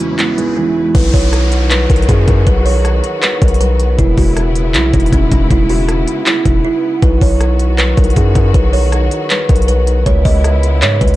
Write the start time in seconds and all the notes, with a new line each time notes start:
Already playing: E2 C#3 E3 G#3 B3 C#4 E4 F#4 B4, riser
0.19 B3 E4, clap, closed hi-hat
0.38 G#3 D#4, closed hi-hat
0.57 E3 E4
0.95 B1 D#3 F#3 B3 F#4 B4, kick, closed hi-hat, crash, downlifter
1.14 B1 C#5, kick, open hi-hat
1.33 cross-stick, closed hi-hat
1.52 closed hi-hat
1.71 B4, clap, closed hi-hat
1.90 B1 A#4, kick, closed hi-hat
1.96 closed hi-hat
2.02 closed hi-hat
2.09 F#2 G#4, kick, closed hi-hat
2.27 F#2 A#4, kick, closed hi-hat
2.47 B1 B4, kick, closed hi-hat
2.66 C#5, open hi-hat
2.85 cross-stick, closed hi-hat
3.04 closed hi-hat
3.23 B4, clap, closed hi-hat
3.42 B1 A#4, kick, closed hi-hat
3.48 closed hi-hat
3.54 closed hi-hat
3.61 B4, closed hi-hat
3.80 closed hi-hat
3.99 E1 C#3 G#3 E4, kick, closed hi-hat
4.18 E1 F#4, kick, open hi-hat
4.37 cross-stick, closed hi-hat
4.55 closed hi-hat
4.74 B1 E4, clap, closed hi-hat
4.93 E1 D#4, kick, closed hi-hat
5.00 closed hi-hat
5.06 closed hi-hat
5.12 E1 C#4, kick, closed hi-hat
5.32 E1 D#4, kick, closed hi-hat
5.50 E1 E4, kick, closed hi-hat
5.69 F#4, open hi-hat
5.88 cross-stick, closed hi-hat
6.08 closed hi-hat
6.26 E4, clap, closed hi-hat
6.45 E1 D#4, kick, closed hi-hat
6.65 E4
7.02 B1 D#3 F#3 F#4 B4, kick, closed hi-hat
7.21 B1 C#5, kick, open hi-hat
7.41 cross-stick, closed hi-hat
7.59 closed hi-hat
7.78 B4, clap, closed hi-hat
7.97 B1 A#4, kick, closed hi-hat
8.04 closed hi-hat
8.10 closed hi-hat
8.16 F#2 G#4, kick, closed hi-hat
8.35 F#2 A#4, kick, closed hi-hat
8.54 B1 B4, kick, closed hi-hat
8.73 C#5, open hi-hat
8.92 cross-stick, closed hi-hat
9.11 closed hi-hat
9.30 B4, clap, closed hi-hat
9.49 B1 A#4, kick, closed hi-hat
9.56 closed hi-hat
9.62 closed hi-hat
9.68 B4, closed hi-hat
9.87 closed hi-hat
10.06 C#2 C#3 G#3 B3 E4 C#5, kick, closed hi-hat
10.25 C#2 D#5, kick, open hi-hat
10.44 cross-stick, closed hi-hat
10.63 closed hi-hat
10.82 G#2 C#5, clap, closed hi-hat
11.01 C#2 B4, kick, closed hi-hat
11.08 closed hi-hat